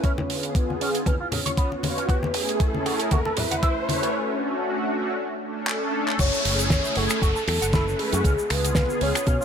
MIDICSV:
0, 0, Header, 1, 8, 480
1, 0, Start_track
1, 0, Key_signature, 3, "minor"
1, 0, Tempo, 512821
1, 38, Time_signature, 4, 2, 24, 8
1, 8844, End_track
2, 0, Start_track
2, 0, Title_t, "Soft synth lead"
2, 0, Program_c, 0, 80
2, 40, Note_on_c, 0, 73, 105
2, 518, Note_on_c, 0, 71, 97
2, 532, Note_off_c, 0, 73, 0
2, 995, Note_off_c, 0, 71, 0
2, 1001, Note_on_c, 0, 71, 93
2, 1108, Note_off_c, 0, 71, 0
2, 1242, Note_on_c, 0, 73, 104
2, 1923, Note_off_c, 0, 73, 0
2, 1960, Note_on_c, 0, 71, 101
2, 2439, Note_on_c, 0, 69, 92
2, 2453, Note_off_c, 0, 71, 0
2, 2919, Note_off_c, 0, 69, 0
2, 2923, Note_on_c, 0, 69, 91
2, 3159, Note_on_c, 0, 76, 110
2, 3173, Note_off_c, 0, 69, 0
2, 3878, Note_off_c, 0, 76, 0
2, 5803, Note_on_c, 0, 73, 104
2, 6247, Note_off_c, 0, 73, 0
2, 6284, Note_on_c, 0, 73, 92
2, 6521, Note_on_c, 0, 69, 106
2, 6535, Note_off_c, 0, 73, 0
2, 6999, Note_off_c, 0, 69, 0
2, 7005, Note_on_c, 0, 69, 96
2, 7482, Note_on_c, 0, 68, 101
2, 7496, Note_off_c, 0, 69, 0
2, 7960, Note_on_c, 0, 71, 107
2, 7974, Note_off_c, 0, 68, 0
2, 8438, Note_on_c, 0, 73, 121
2, 8452, Note_off_c, 0, 71, 0
2, 8844, Note_off_c, 0, 73, 0
2, 8844, End_track
3, 0, Start_track
3, 0, Title_t, "Clean electric guitar"
3, 0, Program_c, 1, 27
3, 36, Note_on_c, 1, 61, 76
3, 103, Note_off_c, 1, 61, 0
3, 757, Note_on_c, 1, 61, 73
3, 824, Note_off_c, 1, 61, 0
3, 994, Note_on_c, 1, 61, 77
3, 1062, Note_off_c, 1, 61, 0
3, 1127, Note_on_c, 1, 65, 72
3, 1183, Note_off_c, 1, 65, 0
3, 1235, Note_on_c, 1, 49, 72
3, 1303, Note_off_c, 1, 49, 0
3, 1364, Note_on_c, 1, 73, 70
3, 1399, Note_off_c, 1, 73, 0
3, 1476, Note_on_c, 1, 59, 78
3, 1576, Note_off_c, 1, 59, 0
3, 1846, Note_on_c, 1, 61, 75
3, 1902, Note_off_c, 1, 61, 0
3, 1955, Note_on_c, 1, 66, 80
3, 2023, Note_off_c, 1, 66, 0
3, 2675, Note_on_c, 1, 66, 73
3, 2742, Note_off_c, 1, 66, 0
3, 2917, Note_on_c, 1, 66, 83
3, 2983, Note_off_c, 1, 66, 0
3, 3048, Note_on_c, 1, 69, 76
3, 3103, Note_off_c, 1, 69, 0
3, 3156, Note_on_c, 1, 54, 76
3, 3223, Note_off_c, 1, 54, 0
3, 3286, Note_on_c, 1, 78, 71
3, 3321, Note_off_c, 1, 78, 0
3, 3392, Note_on_c, 1, 64, 82
3, 3494, Note_off_c, 1, 64, 0
3, 3764, Note_on_c, 1, 66, 77
3, 3821, Note_off_c, 1, 66, 0
3, 5796, Note_on_c, 1, 66, 78
3, 5863, Note_off_c, 1, 66, 0
3, 6517, Note_on_c, 1, 66, 80
3, 6583, Note_off_c, 1, 66, 0
3, 6755, Note_on_c, 1, 66, 83
3, 6822, Note_off_c, 1, 66, 0
3, 6888, Note_on_c, 1, 69, 76
3, 6943, Note_off_c, 1, 69, 0
3, 6999, Note_on_c, 1, 54, 75
3, 7065, Note_off_c, 1, 54, 0
3, 7127, Note_on_c, 1, 78, 73
3, 7161, Note_off_c, 1, 78, 0
3, 7239, Note_on_c, 1, 64, 78
3, 7337, Note_off_c, 1, 64, 0
3, 7607, Note_on_c, 1, 66, 80
3, 7662, Note_off_c, 1, 66, 0
3, 7715, Note_on_c, 1, 61, 81
3, 7783, Note_off_c, 1, 61, 0
3, 8436, Note_on_c, 1, 61, 79
3, 8503, Note_off_c, 1, 61, 0
3, 8673, Note_on_c, 1, 61, 86
3, 8742, Note_off_c, 1, 61, 0
3, 8804, Note_on_c, 1, 65, 77
3, 8844, Note_off_c, 1, 65, 0
3, 8844, End_track
4, 0, Start_track
4, 0, Title_t, "Analog synth pad"
4, 0, Program_c, 2, 89
4, 26, Note_on_c, 2, 59, 70
4, 33, Note_on_c, 2, 50, 69
4, 39, Note_on_c, 2, 65, 68
4, 45, Note_on_c, 2, 68, 83
4, 726, Note_off_c, 2, 59, 0
4, 729, Note_off_c, 2, 50, 0
4, 733, Note_off_c, 2, 65, 0
4, 736, Note_off_c, 2, 68, 0
4, 1358, Note_on_c, 2, 59, 81
4, 1370, Note_on_c, 2, 65, 77
4, 1376, Note_on_c, 2, 73, 90
4, 1926, Note_off_c, 2, 59, 0
4, 1932, Note_off_c, 2, 65, 0
4, 1935, Note_off_c, 2, 73, 0
4, 1949, Note_on_c, 2, 57, 75
4, 1954, Note_on_c, 2, 61, 69
4, 1960, Note_on_c, 2, 64, 70
4, 1967, Note_on_c, 2, 68, 82
4, 2647, Note_off_c, 2, 57, 0
4, 2650, Note_off_c, 2, 61, 0
4, 2653, Note_off_c, 2, 64, 0
4, 2656, Note_off_c, 2, 68, 0
4, 3277, Note_on_c, 2, 57, 83
4, 3280, Note_on_c, 2, 61, 74
4, 3288, Note_on_c, 2, 64, 76
4, 3295, Note_on_c, 2, 71, 90
4, 3846, Note_off_c, 2, 57, 0
4, 3847, Note_off_c, 2, 61, 0
4, 3851, Note_off_c, 2, 64, 0
4, 3854, Note_off_c, 2, 71, 0
4, 3866, Note_on_c, 2, 57, 74
4, 3872, Note_on_c, 2, 61, 68
4, 3878, Note_on_c, 2, 62, 71
4, 3884, Note_on_c, 2, 66, 86
4, 4566, Note_off_c, 2, 57, 0
4, 4569, Note_off_c, 2, 61, 0
4, 4572, Note_off_c, 2, 62, 0
4, 4575, Note_off_c, 2, 66, 0
4, 5063, Note_on_c, 2, 57, 84
4, 5070, Note_on_c, 2, 61, 77
4, 5077, Note_on_c, 2, 62, 75
4, 5083, Note_on_c, 2, 69, 91
4, 5765, Note_off_c, 2, 57, 0
4, 5768, Note_off_c, 2, 61, 0
4, 5772, Note_off_c, 2, 62, 0
4, 5775, Note_off_c, 2, 69, 0
4, 5787, Note_on_c, 2, 57, 78
4, 5793, Note_on_c, 2, 61, 69
4, 5799, Note_on_c, 2, 64, 69
4, 5804, Note_on_c, 2, 68, 83
4, 6486, Note_off_c, 2, 57, 0
4, 6489, Note_off_c, 2, 61, 0
4, 6492, Note_off_c, 2, 64, 0
4, 6495, Note_off_c, 2, 68, 0
4, 7120, Note_on_c, 2, 57, 81
4, 7124, Note_on_c, 2, 61, 78
4, 7131, Note_on_c, 2, 64, 76
4, 7137, Note_on_c, 2, 71, 91
4, 7687, Note_off_c, 2, 57, 0
4, 7689, Note_off_c, 2, 61, 0
4, 7693, Note_off_c, 2, 64, 0
4, 7696, Note_off_c, 2, 71, 0
4, 7705, Note_on_c, 2, 59, 74
4, 7712, Note_on_c, 2, 50, 69
4, 7717, Note_on_c, 2, 65, 70
4, 7724, Note_on_c, 2, 68, 81
4, 8405, Note_off_c, 2, 59, 0
4, 8409, Note_off_c, 2, 50, 0
4, 8412, Note_off_c, 2, 65, 0
4, 8415, Note_off_c, 2, 68, 0
4, 8844, End_track
5, 0, Start_track
5, 0, Title_t, "Fingered electric bass"
5, 0, Program_c, 3, 33
5, 5799, Note_on_c, 3, 30, 98
5, 5891, Note_off_c, 3, 30, 0
5, 6038, Note_on_c, 3, 30, 81
5, 6347, Note_off_c, 3, 30, 0
5, 6520, Note_on_c, 3, 30, 83
5, 6612, Note_off_c, 3, 30, 0
5, 6756, Note_on_c, 3, 30, 105
5, 6850, Note_off_c, 3, 30, 0
5, 6997, Note_on_c, 3, 40, 99
5, 7090, Note_off_c, 3, 40, 0
5, 7130, Note_on_c, 3, 30, 82
5, 7427, Note_off_c, 3, 30, 0
5, 7608, Note_on_c, 3, 42, 83
5, 7685, Note_off_c, 3, 42, 0
5, 7717, Note_on_c, 3, 37, 97
5, 7810, Note_off_c, 3, 37, 0
5, 7959, Note_on_c, 3, 37, 83
5, 8268, Note_off_c, 3, 37, 0
5, 8437, Note_on_c, 3, 37, 86
5, 8530, Note_off_c, 3, 37, 0
5, 8676, Note_on_c, 3, 47, 98
5, 8770, Note_off_c, 3, 47, 0
5, 8844, End_track
6, 0, Start_track
6, 0, Title_t, "Downlifter"
6, 0, Program_c, 4, 103
6, 5798, Note_on_c, 4, 60, 77
6, 8844, Note_off_c, 4, 60, 0
6, 8844, End_track
7, 0, Start_track
7, 0, Title_t, "Riser"
7, 0, Program_c, 5, 103
7, 0, Note_on_c, 5, 60, 74
7, 3878, Note_off_c, 5, 60, 0
7, 8844, End_track
8, 0, Start_track
8, 0, Title_t, "Drums"
8, 34, Note_on_c, 9, 42, 58
8, 35, Note_on_c, 9, 36, 114
8, 43, Note_on_c, 9, 47, 51
8, 127, Note_off_c, 9, 42, 0
8, 128, Note_off_c, 9, 36, 0
8, 136, Note_off_c, 9, 47, 0
8, 168, Note_on_c, 9, 62, 65
8, 170, Note_on_c, 9, 63, 90
8, 262, Note_off_c, 9, 62, 0
8, 263, Note_off_c, 9, 63, 0
8, 279, Note_on_c, 9, 46, 95
8, 373, Note_off_c, 9, 46, 0
8, 404, Note_on_c, 9, 42, 72
8, 498, Note_off_c, 9, 42, 0
8, 515, Note_on_c, 9, 36, 118
8, 517, Note_on_c, 9, 47, 54
8, 520, Note_on_c, 9, 42, 66
8, 608, Note_off_c, 9, 36, 0
8, 610, Note_off_c, 9, 47, 0
8, 614, Note_off_c, 9, 42, 0
8, 657, Note_on_c, 9, 63, 64
8, 750, Note_off_c, 9, 63, 0
8, 761, Note_on_c, 9, 46, 91
8, 854, Note_off_c, 9, 46, 0
8, 886, Note_on_c, 9, 42, 75
8, 980, Note_off_c, 9, 42, 0
8, 994, Note_on_c, 9, 36, 123
8, 994, Note_on_c, 9, 47, 59
8, 996, Note_on_c, 9, 42, 63
8, 996, Note_on_c, 9, 63, 83
8, 1088, Note_off_c, 9, 36, 0
8, 1088, Note_off_c, 9, 47, 0
8, 1090, Note_off_c, 9, 42, 0
8, 1090, Note_off_c, 9, 63, 0
8, 1232, Note_on_c, 9, 64, 88
8, 1236, Note_on_c, 9, 46, 104
8, 1326, Note_off_c, 9, 64, 0
8, 1329, Note_off_c, 9, 46, 0
8, 1366, Note_on_c, 9, 42, 74
8, 1367, Note_on_c, 9, 63, 63
8, 1460, Note_off_c, 9, 42, 0
8, 1461, Note_off_c, 9, 63, 0
8, 1474, Note_on_c, 9, 36, 120
8, 1474, Note_on_c, 9, 47, 61
8, 1476, Note_on_c, 9, 42, 66
8, 1567, Note_off_c, 9, 36, 0
8, 1568, Note_off_c, 9, 47, 0
8, 1570, Note_off_c, 9, 42, 0
8, 1608, Note_on_c, 9, 62, 37
8, 1702, Note_off_c, 9, 62, 0
8, 1715, Note_on_c, 9, 63, 101
8, 1720, Note_on_c, 9, 46, 101
8, 1809, Note_off_c, 9, 63, 0
8, 1813, Note_off_c, 9, 46, 0
8, 1853, Note_on_c, 9, 42, 66
8, 1947, Note_off_c, 9, 42, 0
8, 1953, Note_on_c, 9, 36, 124
8, 1959, Note_on_c, 9, 47, 70
8, 1960, Note_on_c, 9, 42, 60
8, 2047, Note_off_c, 9, 36, 0
8, 2052, Note_off_c, 9, 47, 0
8, 2053, Note_off_c, 9, 42, 0
8, 2085, Note_on_c, 9, 63, 96
8, 2098, Note_on_c, 9, 62, 58
8, 2179, Note_off_c, 9, 63, 0
8, 2190, Note_on_c, 9, 46, 108
8, 2191, Note_off_c, 9, 62, 0
8, 2193, Note_on_c, 9, 47, 77
8, 2283, Note_off_c, 9, 46, 0
8, 2286, Note_off_c, 9, 47, 0
8, 2329, Note_on_c, 9, 42, 72
8, 2423, Note_off_c, 9, 42, 0
8, 2432, Note_on_c, 9, 47, 79
8, 2434, Note_on_c, 9, 36, 127
8, 2434, Note_on_c, 9, 42, 63
8, 2526, Note_off_c, 9, 47, 0
8, 2528, Note_off_c, 9, 36, 0
8, 2528, Note_off_c, 9, 42, 0
8, 2569, Note_on_c, 9, 63, 70
8, 2663, Note_off_c, 9, 63, 0
8, 2676, Note_on_c, 9, 47, 81
8, 2677, Note_on_c, 9, 46, 95
8, 2770, Note_off_c, 9, 47, 0
8, 2771, Note_off_c, 9, 46, 0
8, 2804, Note_on_c, 9, 42, 70
8, 2897, Note_off_c, 9, 42, 0
8, 2912, Note_on_c, 9, 42, 66
8, 2914, Note_on_c, 9, 47, 74
8, 2915, Note_on_c, 9, 36, 123
8, 2926, Note_on_c, 9, 63, 103
8, 3006, Note_off_c, 9, 42, 0
8, 3007, Note_off_c, 9, 47, 0
8, 3009, Note_off_c, 9, 36, 0
8, 3020, Note_off_c, 9, 63, 0
8, 3046, Note_on_c, 9, 62, 61
8, 3139, Note_off_c, 9, 62, 0
8, 3151, Note_on_c, 9, 46, 110
8, 3157, Note_on_c, 9, 47, 75
8, 3165, Note_on_c, 9, 64, 84
8, 3245, Note_off_c, 9, 46, 0
8, 3251, Note_off_c, 9, 47, 0
8, 3259, Note_off_c, 9, 64, 0
8, 3289, Note_on_c, 9, 42, 80
8, 3289, Note_on_c, 9, 62, 34
8, 3298, Note_on_c, 9, 63, 64
8, 3383, Note_off_c, 9, 42, 0
8, 3383, Note_off_c, 9, 62, 0
8, 3392, Note_off_c, 9, 63, 0
8, 3395, Note_on_c, 9, 42, 67
8, 3396, Note_on_c, 9, 36, 123
8, 3398, Note_on_c, 9, 47, 92
8, 3489, Note_off_c, 9, 36, 0
8, 3489, Note_off_c, 9, 42, 0
8, 3492, Note_off_c, 9, 47, 0
8, 3639, Note_on_c, 9, 47, 79
8, 3640, Note_on_c, 9, 63, 90
8, 3645, Note_on_c, 9, 46, 101
8, 3732, Note_off_c, 9, 47, 0
8, 3734, Note_off_c, 9, 63, 0
8, 3738, Note_off_c, 9, 46, 0
8, 3773, Note_on_c, 9, 42, 72
8, 3867, Note_off_c, 9, 42, 0
8, 5309, Note_on_c, 9, 39, 109
8, 5403, Note_off_c, 9, 39, 0
8, 5691, Note_on_c, 9, 39, 71
8, 5785, Note_off_c, 9, 39, 0
8, 5793, Note_on_c, 9, 49, 110
8, 5794, Note_on_c, 9, 42, 73
8, 5797, Note_on_c, 9, 36, 121
8, 5801, Note_on_c, 9, 82, 67
8, 5887, Note_off_c, 9, 42, 0
8, 5887, Note_off_c, 9, 49, 0
8, 5890, Note_off_c, 9, 36, 0
8, 5894, Note_off_c, 9, 82, 0
8, 5931, Note_on_c, 9, 82, 49
8, 6025, Note_off_c, 9, 82, 0
8, 6040, Note_on_c, 9, 46, 109
8, 6133, Note_off_c, 9, 46, 0
8, 6167, Note_on_c, 9, 42, 80
8, 6175, Note_on_c, 9, 82, 75
8, 6261, Note_off_c, 9, 42, 0
8, 6269, Note_off_c, 9, 82, 0
8, 6273, Note_on_c, 9, 38, 125
8, 6277, Note_on_c, 9, 36, 121
8, 6280, Note_on_c, 9, 82, 73
8, 6283, Note_on_c, 9, 42, 68
8, 6367, Note_off_c, 9, 38, 0
8, 6370, Note_off_c, 9, 36, 0
8, 6373, Note_off_c, 9, 82, 0
8, 6376, Note_off_c, 9, 42, 0
8, 6408, Note_on_c, 9, 82, 55
8, 6502, Note_off_c, 9, 82, 0
8, 6510, Note_on_c, 9, 46, 99
8, 6603, Note_off_c, 9, 46, 0
8, 6641, Note_on_c, 9, 82, 79
8, 6647, Note_on_c, 9, 42, 80
8, 6652, Note_on_c, 9, 26, 81
8, 6734, Note_off_c, 9, 82, 0
8, 6741, Note_off_c, 9, 42, 0
8, 6746, Note_off_c, 9, 26, 0
8, 6757, Note_on_c, 9, 36, 121
8, 6765, Note_on_c, 9, 42, 68
8, 6767, Note_on_c, 9, 82, 71
8, 6850, Note_off_c, 9, 36, 0
8, 6858, Note_off_c, 9, 42, 0
8, 6861, Note_off_c, 9, 82, 0
8, 6889, Note_on_c, 9, 82, 52
8, 6982, Note_off_c, 9, 82, 0
8, 6998, Note_on_c, 9, 46, 105
8, 7006, Note_on_c, 9, 26, 74
8, 7091, Note_off_c, 9, 46, 0
8, 7099, Note_off_c, 9, 26, 0
8, 7136, Note_on_c, 9, 42, 92
8, 7136, Note_on_c, 9, 82, 91
8, 7230, Note_off_c, 9, 42, 0
8, 7230, Note_off_c, 9, 82, 0
8, 7236, Note_on_c, 9, 36, 121
8, 7238, Note_on_c, 9, 42, 74
8, 7240, Note_on_c, 9, 38, 121
8, 7240, Note_on_c, 9, 82, 69
8, 7330, Note_off_c, 9, 36, 0
8, 7332, Note_off_c, 9, 42, 0
8, 7333, Note_off_c, 9, 82, 0
8, 7334, Note_off_c, 9, 38, 0
8, 7378, Note_on_c, 9, 82, 48
8, 7472, Note_off_c, 9, 82, 0
8, 7480, Note_on_c, 9, 46, 91
8, 7574, Note_off_c, 9, 46, 0
8, 7605, Note_on_c, 9, 42, 75
8, 7614, Note_on_c, 9, 82, 82
8, 7699, Note_off_c, 9, 42, 0
8, 7708, Note_off_c, 9, 82, 0
8, 7716, Note_on_c, 9, 36, 123
8, 7720, Note_on_c, 9, 42, 66
8, 7723, Note_on_c, 9, 82, 60
8, 7810, Note_off_c, 9, 36, 0
8, 7813, Note_off_c, 9, 42, 0
8, 7816, Note_off_c, 9, 82, 0
8, 7850, Note_on_c, 9, 82, 55
8, 7944, Note_off_c, 9, 82, 0
8, 7958, Note_on_c, 9, 46, 112
8, 7959, Note_on_c, 9, 26, 72
8, 8051, Note_off_c, 9, 46, 0
8, 8053, Note_off_c, 9, 26, 0
8, 8092, Note_on_c, 9, 42, 82
8, 8094, Note_on_c, 9, 82, 75
8, 8185, Note_off_c, 9, 42, 0
8, 8188, Note_off_c, 9, 82, 0
8, 8189, Note_on_c, 9, 38, 127
8, 8196, Note_on_c, 9, 36, 122
8, 8196, Note_on_c, 9, 82, 72
8, 8202, Note_on_c, 9, 42, 64
8, 8283, Note_off_c, 9, 38, 0
8, 8289, Note_off_c, 9, 36, 0
8, 8289, Note_off_c, 9, 82, 0
8, 8295, Note_off_c, 9, 42, 0
8, 8328, Note_on_c, 9, 82, 49
8, 8422, Note_off_c, 9, 82, 0
8, 8434, Note_on_c, 9, 46, 101
8, 8528, Note_off_c, 9, 46, 0
8, 8568, Note_on_c, 9, 26, 84
8, 8569, Note_on_c, 9, 42, 74
8, 8578, Note_on_c, 9, 82, 74
8, 8662, Note_off_c, 9, 26, 0
8, 8662, Note_off_c, 9, 42, 0
8, 8672, Note_off_c, 9, 82, 0
8, 8673, Note_on_c, 9, 42, 69
8, 8675, Note_on_c, 9, 36, 124
8, 8676, Note_on_c, 9, 82, 65
8, 8767, Note_off_c, 9, 42, 0
8, 8769, Note_off_c, 9, 36, 0
8, 8769, Note_off_c, 9, 82, 0
8, 8812, Note_on_c, 9, 82, 50
8, 8844, Note_off_c, 9, 82, 0
8, 8844, End_track
0, 0, End_of_file